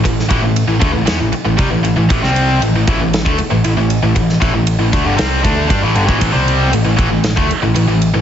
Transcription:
<<
  \new Staff \with { instrumentName = "Distorted electric guitar" } { \clef bass \time 4/4 \key a \minor \tempo 4 = 117 <a, e>8 <a, e>16 <a, e>8 <a, e>16 <d a>16 <a, e>16 <e b>16 <a, e>16 r16 <a, e>16 <c g>16 <a, e>16 <a, e>16 <a, e>16 | <a, e>16 <c g c'>8. <a, e>16 <a, e>16 <a, e>16 <a, e>8 <d a>16 r16 <a, e>16 <a, e>16 <a, e>8 <a, e>16 | <a, e>8 <a, e>16 <a, e>8 <a, e>16 <d a>16 <g, d>16 <c g c'>8 <d a d'>8 <g d'>16 <a, e>16 <g, d>16 <a, e>16 | <a, e>16 <c g c'>8. <a, e>16 <a, e>16 <a, e>16 <a, e>8 <d a>16 r16 <a, e>16 <a, e>16 <a, e>8 <a, e>16 | }
  \new Staff \with { instrumentName = "Picked electric bass" } { \clef bass \time 4/4 \key a \minor a,,8 a,,16 a,,8 a,,16 d,16 a,,16 e,16 a,,16 r16 a,,16 c,16 a,,16 a,,16 a,,16 | a,,16 c,8. a,,16 a,,16 a,,16 a,,8 d,16 r16 a,,16 a,,16 a,,8 a,,16 | a,,8 a,,16 a,,8 a,,16 d,16 g,,16 c,8 d,8 g,16 a,,16 g,,16 a,,16 | a,,16 c,8. a,,16 a,,16 a,,16 a,,8 d,16 r16 a,,16 a,,16 a,,8 a,,16 | }
  \new DrumStaff \with { instrumentName = "Drums" } \drummode { \time 4/4 <bd cymr>16 sn16 <bd cymr>8 cymr8 <bd cymr>8 <cymr sn>8 cymr8 <bd cymr>8 cymr8 | <bd cymr>16 sn16 cymr8 cymr8 <bd cymr>8 <cymr sn>16 bd16 cymr8 cymr8 cymr8 | <bd cymr>16 sn16 <bd cymr>8 cymr8 <bd cymr>8 <cymr sn>8 <bd cymr>8 <bd cymr>8 cymr16 bd16 | <bd cymr>8 cymr8 cymr8 <bd cymr>8 <cymr sn>16 bd16 cymr8 cymr8 cymr8 | }
>>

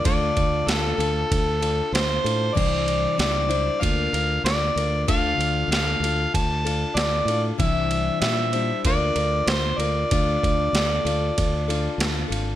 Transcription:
<<
  \new Staff \with { instrumentName = "Harmonica" } { \time 4/4 \key d \minor \tempo 4 = 95 d''4 a'2 c''4 | d''4 d''4 f''4 d''4 | f''4 f''4 a''4 d''4 | e''4 e''4 d''4 c''8 d''8~ |
d''2. r4 | }
  \new Staff \with { instrumentName = "Steel-string acoustic guitar" } { \time 4/4 \key d \minor <d a d' f' a'>4 <a d' f' a'>8 <d' f' a'>4 <d' f' a'>4 <d' f' a'>8 | <c e g d' e' c''>4 <g d' e' c''>8 <g d' e' c''>8 <d bes d' f' bes'>8 <d' f' bes'>4 <d' f' bes'>8 | <d a d' f' a'>4 <a d' f' a'>8 <d' f' a'>4 <d' f' a'>4 <d' f' a'>8 | <c e g d' e' c''>4 <g d' e' c''>8 <g d' e' c''>8 <d bes d' f' bes'>8 <d' f' bes'>4 <d' f' bes'>8 |
<d a d' f' a'>4 <a d' f' a'>8 <d' f' a'>4 <d' f' a'>4 <d' f' a'>8 | }
  \new Staff \with { instrumentName = "Fingered electric bass" } { \clef bass \time 4/4 \key d \minor d,8 d,8 d,8 d,8 d,4 d,8 a,8 | c,4 cis,4 d,8 d,8 d,8 d,8 | d,8 d,8 d,8 d,8 d,4 d,8 a,8 | c,4 bes,4 d,8 d,8 d,8 d,8 |
d,8 d,8 d,8 d,8 d,4 d,8 gis,,8 | }
  \new DrumStaff \with { instrumentName = "Drums" } \drummode { \time 4/4 <bd cymr>8 <bd cymr>8 <cymr sn>8 cymr8 <bd cymr>8 cymr8 <cymr sn>8 cymr8 | <cymc bd>8 cymr8 <cymr sn>8 cymr8 <bd cymr>8 cymr8 <cymr sn>8 cymr8 | <bd cymr>8 cymr8 <cymr sn>8 cymr8 <bd cymr>8 cymr8 <cymr sn>8 cymr8 | <bd cymr>8 cymr8 <cymr sn>8 cymr8 <bd cymr>8 cymr8 <cymr sn>8 cymr8 |
<bd cymr>8 <bd cymr>8 <cymr sn>8 cymr8 <bd cymr>8 cymr8 <cymr sn>8 cymr8 | }
>>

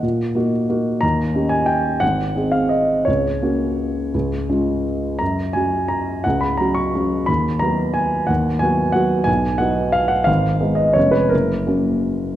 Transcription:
<<
  \new Staff \with { instrumentName = "Grand piano" } { \time 3/4 \key fis \major \tempo 4 = 175 fis''4. r4. | ais''4. gis''8 g''4 | fis''4. eis''8 dis''4 | cis''2.~ |
cis''2 r4 | ais''4 gis''4 ais''4 | fis''8 b''8 ais''8 cis'''4. | b''4 ais''4 gis''4 |
fis''4 gis''4 fis''4 | gis''4 fis''4 eis''8 fis''8 | eis''4. dis''8 cis''8 b'8 | ais'2. | }
  \new Staff \with { instrumentName = "Grand piano" } { \time 3/4 \key fis \major ais,4 <ais dis' fis'>4 <ais dis' fis'>4 | dis,4 <cis' dis' g'>2 | gis,,4 <bis dis' gis'>2 | cis,4 <ais cis' fis'>2 |
cis,4 <gis cis' eis'>2 | fis,4 <fis cis' fis'>2 | cis,4 <fis cis' fis'>4 <fis cis' fis'>4 | dis,4 <fis b fis'>2 |
dis,4 <fis b fis'>4 <fis b fis'>4 | b,,4 <fis b dis'>2 | gis,,4 <gis b dis'>4 <eis,, gis b cis'>4 | fis,,4 <fis ais cis'>2 | }
>>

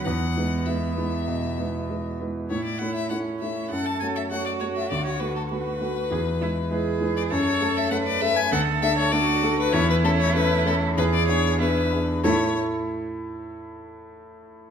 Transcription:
<<
  \new Staff \with { instrumentName = "Violin" } { \time 4/4 \key a \major \tempo 4 = 98 fis''4 e''2~ e''8 r8 | cis''16 d''16 fis''16 e''16 fis''8 e''8 fis''16 a''16 gis''16 e''16 fis''16 d''16 cis''16 e''16 | d''16 cis''16 b'16 a'16 b'2~ b'8. d''16 | cis''8. e''16 fis''16 d''16 e''16 gis''16 fis''8 e''16 cis''16 d''8. b'16 |
cis''16 b'16 a'16 cis''16 b'8 a'8 b'16 d''16 cis''8 b'4 | cis''8 r2. r8 | }
  \new Staff \with { instrumentName = "Cello" } { \time 4/4 \key a \major b2.~ b8 r8 | e'4 cis'4 a'4 fis'4~ | fis'2 gis'8 e'8 gis'4 | a'4 b'4 a'4 fis'4 |
e'2 gis'4 e'8 r8 | a8 r2. r8 | }
  \new Staff \with { instrumentName = "Grand piano" } { \time 4/4 \key a \major e,8 <gis e' b'>8 <gis e' b'>8 <gis e' b'>8 b,8 <gis e' b'>8 <gis e' b'>8 <gis e' b'>8 | a,8 <a e' cis''>8 <a e' cis''>8 <a e' cis''>8 fis,8 <a fis' cis''>8 <a fis' cis''>8 <a fis' cis''>8 | d,8 <a fis' b'>8 <a fis' b'>8 <a fis' b'>8 e,8 <gis e' b'>8 <gis e' b'>8 <gis e' b'>8 | fis,8 <a cis' a'>8 <a cis' a'>8 <a cis' a'>8 d,8 <a d' a'>8 <a d' a'>8 <a d' a'>8 |
e,8 <a cis' a'>8 <a cis' a'>8 <a cis' a'>8 e,8 <b d' gis'>8 <b d' gis'>8 <b d' gis'>8 | <a, a e' a' e''>8 r2. r8 | }
>>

